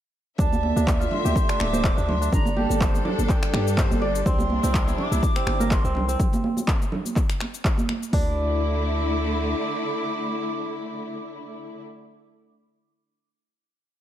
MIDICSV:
0, 0, Header, 1, 6, 480
1, 0, Start_track
1, 0, Key_signature, -1, "minor"
1, 0, Tempo, 483871
1, 386, Time_signature, 4, 2, 24, 8
1, 13890, End_track
2, 0, Start_track
2, 0, Title_t, "Flute"
2, 0, Program_c, 0, 73
2, 386, Note_on_c, 0, 81, 120
2, 832, Note_off_c, 0, 81, 0
2, 1107, Note_on_c, 0, 84, 105
2, 1584, Note_on_c, 0, 86, 122
2, 1599, Note_off_c, 0, 84, 0
2, 2014, Note_off_c, 0, 86, 0
2, 2014, Note_on_c, 0, 86, 76
2, 2074, Note_on_c, 0, 84, 108
2, 2089, Note_off_c, 0, 86, 0
2, 2300, Note_off_c, 0, 84, 0
2, 2306, Note_on_c, 0, 82, 102
2, 2529, Note_off_c, 0, 82, 0
2, 2555, Note_on_c, 0, 81, 88
2, 2997, Note_off_c, 0, 81, 0
2, 4227, Note_on_c, 0, 84, 108
2, 4907, Note_off_c, 0, 84, 0
2, 4948, Note_on_c, 0, 86, 115
2, 5675, Note_on_c, 0, 84, 98
2, 5690, Note_off_c, 0, 86, 0
2, 6151, Note_off_c, 0, 84, 0
2, 8068, Note_on_c, 0, 86, 102
2, 11730, Note_off_c, 0, 86, 0
2, 13890, End_track
3, 0, Start_track
3, 0, Title_t, "Kora"
3, 0, Program_c, 1, 46
3, 384, Note_on_c, 1, 62, 82
3, 752, Note_off_c, 1, 62, 0
3, 756, Note_on_c, 1, 62, 82
3, 996, Note_on_c, 1, 65, 79
3, 1237, Note_on_c, 1, 67, 73
3, 1472, Note_off_c, 1, 62, 0
3, 1476, Note_on_c, 1, 62, 80
3, 1718, Note_on_c, 1, 72, 81
3, 1949, Note_off_c, 1, 62, 0
3, 1953, Note_on_c, 1, 62, 80
3, 2193, Note_off_c, 1, 62, 0
3, 2197, Note_on_c, 1, 62, 76
3, 2497, Note_off_c, 1, 65, 0
3, 2541, Note_off_c, 1, 67, 0
3, 2545, Note_on_c, 1, 67, 74
3, 2782, Note_off_c, 1, 72, 0
3, 2786, Note_on_c, 1, 72, 91
3, 3025, Note_on_c, 1, 74, 75
3, 3263, Note_on_c, 1, 79, 87
3, 3503, Note_off_c, 1, 67, 0
3, 3507, Note_on_c, 1, 67, 79
3, 3741, Note_off_c, 1, 72, 0
3, 3745, Note_on_c, 1, 72, 85
3, 3863, Note_off_c, 1, 62, 0
3, 3980, Note_off_c, 1, 74, 0
3, 3984, Note_on_c, 1, 74, 107
3, 4187, Note_off_c, 1, 79, 0
3, 4224, Note_on_c, 1, 60, 84
3, 4589, Note_off_c, 1, 60, 0
3, 4593, Note_on_c, 1, 60, 78
3, 4837, Note_on_c, 1, 64, 81
3, 4908, Note_off_c, 1, 67, 0
3, 4923, Note_off_c, 1, 72, 0
3, 5073, Note_off_c, 1, 64, 0
3, 5077, Note_on_c, 1, 64, 74
3, 5083, Note_off_c, 1, 74, 0
3, 5312, Note_off_c, 1, 60, 0
3, 5316, Note_on_c, 1, 60, 77
3, 5555, Note_on_c, 1, 70, 79
3, 5793, Note_off_c, 1, 60, 0
3, 5797, Note_on_c, 1, 60, 81
3, 6030, Note_off_c, 1, 60, 0
3, 6034, Note_on_c, 1, 60, 75
3, 6632, Note_off_c, 1, 64, 0
3, 6818, Note_off_c, 1, 70, 0
3, 7820, Note_off_c, 1, 60, 0
3, 8064, Note_on_c, 1, 62, 97
3, 9730, Note_off_c, 1, 62, 0
3, 13890, End_track
4, 0, Start_track
4, 0, Title_t, "String section"
4, 0, Program_c, 2, 48
4, 387, Note_on_c, 2, 50, 81
4, 387, Note_on_c, 2, 57, 71
4, 387, Note_on_c, 2, 76, 86
4, 2287, Note_off_c, 2, 50, 0
4, 2287, Note_off_c, 2, 57, 0
4, 2287, Note_off_c, 2, 76, 0
4, 2307, Note_on_c, 2, 55, 80
4, 2307, Note_on_c, 2, 69, 89
4, 2310, Note_on_c, 2, 62, 74
4, 4208, Note_off_c, 2, 69, 0
4, 4209, Note_off_c, 2, 62, 0
4, 4223, Note_on_c, 2, 48, 80
4, 4226, Note_on_c, 2, 62, 91
4, 6108, Note_off_c, 2, 55, 0
4, 6125, Note_off_c, 2, 48, 0
4, 6127, Note_off_c, 2, 62, 0
4, 8061, Note_on_c, 2, 50, 83
4, 8063, Note_on_c, 2, 64, 89
4, 8064, Note_on_c, 2, 57, 75
4, 11724, Note_off_c, 2, 50, 0
4, 11726, Note_off_c, 2, 64, 0
4, 11727, Note_off_c, 2, 57, 0
4, 13890, End_track
5, 0, Start_track
5, 0, Title_t, "808-style bass"
5, 0, Program_c, 3, 38
5, 386, Note_on_c, 3, 38, 97
5, 717, Note_off_c, 3, 38, 0
5, 757, Note_on_c, 3, 38, 100
5, 1072, Note_off_c, 3, 38, 0
5, 1238, Note_on_c, 3, 38, 92
5, 1325, Note_off_c, 3, 38, 0
5, 1590, Note_on_c, 3, 26, 98
5, 1918, Note_off_c, 3, 26, 0
5, 1960, Note_on_c, 3, 38, 95
5, 2274, Note_off_c, 3, 38, 0
5, 2306, Note_on_c, 3, 31, 100
5, 2637, Note_off_c, 3, 31, 0
5, 2677, Note_on_c, 3, 31, 96
5, 2992, Note_off_c, 3, 31, 0
5, 3158, Note_on_c, 3, 31, 92
5, 3245, Note_off_c, 3, 31, 0
5, 3505, Note_on_c, 3, 43, 100
5, 3836, Note_off_c, 3, 43, 0
5, 3877, Note_on_c, 3, 31, 93
5, 4192, Note_off_c, 3, 31, 0
5, 4226, Note_on_c, 3, 36, 99
5, 4556, Note_off_c, 3, 36, 0
5, 4597, Note_on_c, 3, 36, 94
5, 4912, Note_off_c, 3, 36, 0
5, 5074, Note_on_c, 3, 36, 89
5, 5163, Note_off_c, 3, 36, 0
5, 5422, Note_on_c, 3, 31, 98
5, 5754, Note_off_c, 3, 31, 0
5, 5794, Note_on_c, 3, 36, 93
5, 6110, Note_off_c, 3, 36, 0
5, 8065, Note_on_c, 3, 38, 101
5, 9466, Note_off_c, 3, 38, 0
5, 13890, End_track
6, 0, Start_track
6, 0, Title_t, "Drums"
6, 380, Note_on_c, 9, 64, 96
6, 385, Note_on_c, 9, 36, 116
6, 394, Note_on_c, 9, 69, 66
6, 479, Note_off_c, 9, 64, 0
6, 485, Note_off_c, 9, 36, 0
6, 493, Note_off_c, 9, 69, 0
6, 520, Note_on_c, 9, 63, 101
6, 521, Note_on_c, 9, 62, 59
6, 526, Note_on_c, 9, 69, 40
6, 619, Note_off_c, 9, 63, 0
6, 620, Note_off_c, 9, 62, 0
6, 625, Note_off_c, 9, 69, 0
6, 627, Note_on_c, 9, 63, 107
6, 726, Note_off_c, 9, 63, 0
6, 762, Note_on_c, 9, 62, 42
6, 763, Note_on_c, 9, 63, 104
6, 765, Note_on_c, 9, 69, 77
6, 861, Note_off_c, 9, 62, 0
6, 862, Note_off_c, 9, 63, 0
6, 864, Note_off_c, 9, 69, 0
6, 866, Note_on_c, 9, 36, 119
6, 870, Note_on_c, 9, 39, 104
6, 875, Note_on_c, 9, 69, 67
6, 965, Note_off_c, 9, 36, 0
6, 969, Note_off_c, 9, 39, 0
6, 975, Note_off_c, 9, 69, 0
6, 999, Note_on_c, 9, 62, 54
6, 1006, Note_on_c, 9, 69, 41
6, 1098, Note_off_c, 9, 62, 0
6, 1103, Note_on_c, 9, 64, 103
6, 1105, Note_off_c, 9, 69, 0
6, 1202, Note_off_c, 9, 64, 0
6, 1236, Note_on_c, 9, 63, 59
6, 1246, Note_on_c, 9, 69, 80
6, 1335, Note_off_c, 9, 63, 0
6, 1342, Note_on_c, 9, 62, 40
6, 1345, Note_off_c, 9, 69, 0
6, 1346, Note_on_c, 9, 36, 122
6, 1354, Note_on_c, 9, 69, 68
6, 1441, Note_off_c, 9, 62, 0
6, 1445, Note_off_c, 9, 36, 0
6, 1454, Note_off_c, 9, 69, 0
6, 1481, Note_on_c, 9, 26, 97
6, 1487, Note_on_c, 9, 69, 41
6, 1580, Note_off_c, 9, 26, 0
6, 1586, Note_off_c, 9, 69, 0
6, 1588, Note_on_c, 9, 26, 101
6, 1589, Note_on_c, 9, 62, 55
6, 1687, Note_off_c, 9, 26, 0
6, 1688, Note_off_c, 9, 62, 0
6, 1718, Note_on_c, 9, 63, 112
6, 1725, Note_on_c, 9, 69, 82
6, 1817, Note_off_c, 9, 63, 0
6, 1824, Note_off_c, 9, 69, 0
6, 1826, Note_on_c, 9, 36, 114
6, 1829, Note_on_c, 9, 39, 102
6, 1835, Note_on_c, 9, 69, 68
6, 1925, Note_off_c, 9, 36, 0
6, 1928, Note_off_c, 9, 39, 0
6, 1934, Note_off_c, 9, 69, 0
6, 1964, Note_on_c, 9, 69, 39
6, 2064, Note_off_c, 9, 69, 0
6, 2070, Note_on_c, 9, 62, 61
6, 2070, Note_on_c, 9, 64, 103
6, 2169, Note_off_c, 9, 64, 0
6, 2170, Note_off_c, 9, 62, 0
6, 2205, Note_on_c, 9, 69, 75
6, 2304, Note_off_c, 9, 69, 0
6, 2306, Note_on_c, 9, 36, 120
6, 2308, Note_on_c, 9, 64, 103
6, 2314, Note_on_c, 9, 69, 72
6, 2406, Note_off_c, 9, 36, 0
6, 2407, Note_off_c, 9, 64, 0
6, 2413, Note_off_c, 9, 69, 0
6, 2434, Note_on_c, 9, 63, 108
6, 2439, Note_on_c, 9, 62, 50
6, 2448, Note_on_c, 9, 69, 41
6, 2534, Note_off_c, 9, 63, 0
6, 2538, Note_off_c, 9, 62, 0
6, 2546, Note_on_c, 9, 63, 116
6, 2547, Note_off_c, 9, 69, 0
6, 2646, Note_off_c, 9, 63, 0
6, 2673, Note_on_c, 9, 62, 41
6, 2686, Note_on_c, 9, 63, 95
6, 2687, Note_on_c, 9, 69, 82
6, 2772, Note_off_c, 9, 62, 0
6, 2785, Note_off_c, 9, 63, 0
6, 2786, Note_off_c, 9, 69, 0
6, 2786, Note_on_c, 9, 36, 124
6, 2790, Note_on_c, 9, 39, 104
6, 2796, Note_on_c, 9, 69, 72
6, 2885, Note_off_c, 9, 36, 0
6, 2889, Note_off_c, 9, 39, 0
6, 2895, Note_off_c, 9, 69, 0
6, 2921, Note_on_c, 9, 62, 52
6, 2927, Note_on_c, 9, 69, 43
6, 3020, Note_off_c, 9, 62, 0
6, 3026, Note_off_c, 9, 69, 0
6, 3026, Note_on_c, 9, 64, 116
6, 3125, Note_off_c, 9, 64, 0
6, 3163, Note_on_c, 9, 63, 69
6, 3166, Note_on_c, 9, 69, 85
6, 3263, Note_off_c, 9, 63, 0
6, 3265, Note_off_c, 9, 69, 0
6, 3266, Note_on_c, 9, 39, 52
6, 3266, Note_on_c, 9, 62, 42
6, 3267, Note_on_c, 9, 36, 124
6, 3272, Note_on_c, 9, 69, 68
6, 3365, Note_off_c, 9, 39, 0
6, 3365, Note_off_c, 9, 62, 0
6, 3366, Note_off_c, 9, 36, 0
6, 3371, Note_off_c, 9, 69, 0
6, 3399, Note_on_c, 9, 26, 95
6, 3405, Note_on_c, 9, 69, 44
6, 3499, Note_off_c, 9, 26, 0
6, 3504, Note_off_c, 9, 69, 0
6, 3508, Note_on_c, 9, 26, 98
6, 3511, Note_on_c, 9, 62, 59
6, 3608, Note_off_c, 9, 26, 0
6, 3610, Note_off_c, 9, 62, 0
6, 3646, Note_on_c, 9, 69, 85
6, 3745, Note_off_c, 9, 69, 0
6, 3746, Note_on_c, 9, 36, 124
6, 3749, Note_on_c, 9, 39, 106
6, 3750, Note_on_c, 9, 62, 43
6, 3755, Note_on_c, 9, 69, 71
6, 3845, Note_off_c, 9, 36, 0
6, 3848, Note_off_c, 9, 39, 0
6, 3849, Note_off_c, 9, 62, 0
6, 3854, Note_off_c, 9, 69, 0
6, 3884, Note_on_c, 9, 63, 103
6, 3886, Note_on_c, 9, 69, 42
6, 3983, Note_off_c, 9, 63, 0
6, 3984, Note_on_c, 9, 63, 74
6, 3985, Note_off_c, 9, 69, 0
6, 3987, Note_on_c, 9, 62, 56
6, 4083, Note_off_c, 9, 63, 0
6, 4086, Note_off_c, 9, 62, 0
6, 4122, Note_on_c, 9, 69, 83
6, 4221, Note_off_c, 9, 69, 0
6, 4224, Note_on_c, 9, 64, 95
6, 4225, Note_on_c, 9, 36, 121
6, 4230, Note_on_c, 9, 69, 72
6, 4323, Note_off_c, 9, 64, 0
6, 4324, Note_off_c, 9, 36, 0
6, 4329, Note_off_c, 9, 69, 0
6, 4351, Note_on_c, 9, 63, 121
6, 4357, Note_on_c, 9, 62, 55
6, 4365, Note_on_c, 9, 69, 44
6, 4450, Note_off_c, 9, 63, 0
6, 4457, Note_off_c, 9, 62, 0
6, 4463, Note_on_c, 9, 63, 112
6, 4464, Note_off_c, 9, 69, 0
6, 4563, Note_off_c, 9, 63, 0
6, 4594, Note_on_c, 9, 63, 96
6, 4599, Note_on_c, 9, 62, 39
6, 4601, Note_on_c, 9, 69, 86
6, 4693, Note_off_c, 9, 63, 0
6, 4698, Note_off_c, 9, 62, 0
6, 4700, Note_off_c, 9, 69, 0
6, 4705, Note_on_c, 9, 36, 127
6, 4708, Note_on_c, 9, 39, 105
6, 4714, Note_on_c, 9, 69, 73
6, 4804, Note_off_c, 9, 36, 0
6, 4808, Note_off_c, 9, 39, 0
6, 4813, Note_off_c, 9, 69, 0
6, 4836, Note_on_c, 9, 62, 53
6, 4842, Note_on_c, 9, 69, 44
6, 4935, Note_off_c, 9, 62, 0
6, 4941, Note_off_c, 9, 69, 0
6, 4942, Note_on_c, 9, 64, 101
6, 5041, Note_off_c, 9, 64, 0
6, 5075, Note_on_c, 9, 63, 70
6, 5083, Note_on_c, 9, 69, 87
6, 5175, Note_off_c, 9, 63, 0
6, 5182, Note_off_c, 9, 69, 0
6, 5185, Note_on_c, 9, 36, 127
6, 5186, Note_on_c, 9, 62, 40
6, 5191, Note_on_c, 9, 69, 72
6, 5284, Note_off_c, 9, 36, 0
6, 5286, Note_off_c, 9, 62, 0
6, 5290, Note_off_c, 9, 69, 0
6, 5317, Note_on_c, 9, 26, 92
6, 5323, Note_on_c, 9, 69, 44
6, 5417, Note_off_c, 9, 26, 0
6, 5422, Note_off_c, 9, 69, 0
6, 5423, Note_on_c, 9, 62, 55
6, 5426, Note_on_c, 9, 26, 95
6, 5523, Note_off_c, 9, 62, 0
6, 5525, Note_off_c, 9, 26, 0
6, 5558, Note_on_c, 9, 63, 114
6, 5563, Note_on_c, 9, 69, 85
6, 5657, Note_off_c, 9, 63, 0
6, 5662, Note_off_c, 9, 69, 0
6, 5664, Note_on_c, 9, 39, 101
6, 5665, Note_on_c, 9, 36, 126
6, 5670, Note_on_c, 9, 69, 71
6, 5764, Note_off_c, 9, 36, 0
6, 5764, Note_off_c, 9, 39, 0
6, 5769, Note_off_c, 9, 69, 0
6, 5802, Note_on_c, 9, 69, 43
6, 5901, Note_off_c, 9, 69, 0
6, 5902, Note_on_c, 9, 62, 53
6, 5918, Note_on_c, 9, 64, 91
6, 6001, Note_off_c, 9, 62, 0
6, 6017, Note_off_c, 9, 64, 0
6, 6040, Note_on_c, 9, 69, 87
6, 6139, Note_off_c, 9, 69, 0
6, 6146, Note_on_c, 9, 36, 125
6, 6149, Note_on_c, 9, 64, 96
6, 6151, Note_on_c, 9, 69, 71
6, 6245, Note_off_c, 9, 36, 0
6, 6248, Note_off_c, 9, 64, 0
6, 6250, Note_off_c, 9, 69, 0
6, 6279, Note_on_c, 9, 62, 57
6, 6284, Note_on_c, 9, 63, 117
6, 6284, Note_on_c, 9, 69, 42
6, 6378, Note_off_c, 9, 62, 0
6, 6383, Note_off_c, 9, 63, 0
6, 6383, Note_off_c, 9, 69, 0
6, 6388, Note_on_c, 9, 63, 113
6, 6487, Note_off_c, 9, 63, 0
6, 6515, Note_on_c, 9, 63, 91
6, 6521, Note_on_c, 9, 62, 36
6, 6524, Note_on_c, 9, 69, 81
6, 6615, Note_off_c, 9, 63, 0
6, 6620, Note_off_c, 9, 62, 0
6, 6623, Note_off_c, 9, 69, 0
6, 6625, Note_on_c, 9, 36, 127
6, 6626, Note_on_c, 9, 39, 103
6, 6632, Note_on_c, 9, 69, 74
6, 6724, Note_off_c, 9, 36, 0
6, 6725, Note_off_c, 9, 39, 0
6, 6731, Note_off_c, 9, 69, 0
6, 6762, Note_on_c, 9, 62, 48
6, 6765, Note_on_c, 9, 69, 43
6, 6861, Note_off_c, 9, 62, 0
6, 6864, Note_off_c, 9, 69, 0
6, 6865, Note_on_c, 9, 64, 106
6, 6964, Note_off_c, 9, 64, 0
6, 6994, Note_on_c, 9, 63, 63
6, 7003, Note_on_c, 9, 69, 78
6, 7093, Note_off_c, 9, 63, 0
6, 7102, Note_off_c, 9, 69, 0
6, 7104, Note_on_c, 9, 39, 49
6, 7105, Note_on_c, 9, 36, 127
6, 7110, Note_on_c, 9, 69, 71
6, 7114, Note_on_c, 9, 62, 38
6, 7203, Note_off_c, 9, 39, 0
6, 7204, Note_off_c, 9, 36, 0
6, 7209, Note_off_c, 9, 69, 0
6, 7213, Note_off_c, 9, 62, 0
6, 7237, Note_on_c, 9, 26, 89
6, 7243, Note_on_c, 9, 69, 42
6, 7336, Note_off_c, 9, 26, 0
6, 7342, Note_off_c, 9, 69, 0
6, 7346, Note_on_c, 9, 26, 92
6, 7359, Note_on_c, 9, 62, 50
6, 7445, Note_off_c, 9, 26, 0
6, 7458, Note_off_c, 9, 62, 0
6, 7482, Note_on_c, 9, 69, 82
6, 7581, Note_off_c, 9, 69, 0
6, 7585, Note_on_c, 9, 36, 127
6, 7588, Note_on_c, 9, 39, 102
6, 7591, Note_on_c, 9, 62, 42
6, 7593, Note_on_c, 9, 69, 68
6, 7684, Note_off_c, 9, 36, 0
6, 7687, Note_off_c, 9, 39, 0
6, 7690, Note_off_c, 9, 62, 0
6, 7693, Note_off_c, 9, 69, 0
6, 7714, Note_on_c, 9, 63, 95
6, 7725, Note_on_c, 9, 69, 42
6, 7814, Note_off_c, 9, 63, 0
6, 7824, Note_off_c, 9, 69, 0
6, 7827, Note_on_c, 9, 26, 82
6, 7827, Note_on_c, 9, 62, 50
6, 7828, Note_on_c, 9, 63, 71
6, 7926, Note_off_c, 9, 26, 0
6, 7926, Note_off_c, 9, 62, 0
6, 7928, Note_off_c, 9, 63, 0
6, 7965, Note_on_c, 9, 69, 83
6, 8064, Note_off_c, 9, 69, 0
6, 8065, Note_on_c, 9, 36, 105
6, 8066, Note_on_c, 9, 46, 87
6, 8164, Note_off_c, 9, 36, 0
6, 8165, Note_off_c, 9, 46, 0
6, 13890, End_track
0, 0, End_of_file